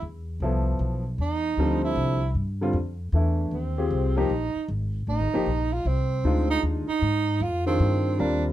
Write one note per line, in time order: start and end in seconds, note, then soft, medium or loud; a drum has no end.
0.01 0.40 E2 medium
0.40 0.78 C2 medium
0.40 1.01 F3 medium
0.40 1.02 B3 medium
0.40 1.02 E4 medium
0.44 1.02 A4 medium
0.79 1.17 B1 medium
1.18 1.56 E2 medium
1.18 1.81 D#4 medium
1.57 1.95 D2 medium
1.57 2.18 D3 medium
1.57 2.18 F3 medium
1.57 2.18 G3 medium
1.57 2.18 C4 medium
1.85 2.33 E4 medium
1.95 2.34 C2 medium
2.35 2.73 G2 medium
2.61 2.73 D3 medium
2.61 2.74 G3 medium
2.61 2.74 C4 medium
2.61 2.74 F4 medium
2.73 3.12 F2 medium
3.12 3.51 E2 medium
3.12 3.53 E3 medium
3.12 3.53 A3 soft
3.12 3.54 D4 soft
3.12 3.54 E4 medium
3.51 3.90 D#2 medium
3.51 4.19 C4 medium
3.78 4.14 C4 medium
3.78 4.15 F4 medium
3.78 4.14 G4 medium
3.78 4.15 G#4 medium
3.91 4.29 C2 medium
4.17 4.29 F3 medium
4.17 4.29 A#3 medium
4.17 4.70 D#4 medium
4.17 4.29 D#4 medium
4.17 4.29 G4 medium
4.29 4.53 A#1 medium
4.55 muted upright bass stroke soft
4.68 5.06 G#1 medium
5.07 5.20 A1 medium
5.07 5.74 D#4 medium
5.20 5.32 G#1 medium
5.33 5.46 G1 medium
5.33 5.46 F3 medium
5.33 5.46 A#3 medium
5.33 5.46 D#4 medium
5.33 5.46 G4 medium
5.46 5.84 A#1 medium
5.73 5.89 F4 medium
5.85 6.23 C2 medium
5.85 6.50 C4 medium
6.24 6.62 D2 medium
6.24 6.84 G#3 soft
6.24 6.84 D4 medium
6.24 6.84 D#4 medium
6.24 6.85 F4 medium
6.50 6.63 D#4 loud
6.63 6.87 D#2 medium
6.88 7.44 D#4 medium
6.88 muted upright bass stroke soft
7.02 7.39 G#2 medium
7.40 7.78 F2 medium
7.40 7.66 F4 loud
7.66 8.16 D#3 medium
7.66 8.22 C4 medium
7.66 8.17 D4 medium
7.66 8.17 F4 medium
7.66 8.16 G#4 medium
7.80 8.18 G2 medium
8.19 8.53 D#2 medium
8.19 8.53 G3 medium
8.19 8.53 C4 medium
8.19 8.45 D4 medium
8.19 8.53 F4 medium
8.19 8.53 A#4 medium